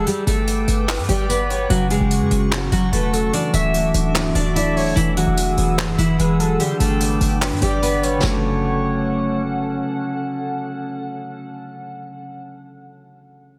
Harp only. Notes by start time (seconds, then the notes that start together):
1.70 C#3
1.90 F#3
2.31 C#4
2.52 C#5
2.72 C#4
2.92 A3
3.13 F#3
3.33 E3
3.54 F#3
3.74 A3
3.94 D4
4.15 E4
4.35 D4
4.56 A3
4.76 F#3
4.97 E3
5.17 F#3
5.37 G#3
5.58 B3
5.78 E4
5.99 B3
6.19 G#3
6.39 F#3
6.60 D3
6.80 G3
7.00 B3
7.21 D4
7.41 D5
7.62 D4
7.82 B3
8.03 G3
8.17 C#3 F#3
8.25 A3
8.29 C#4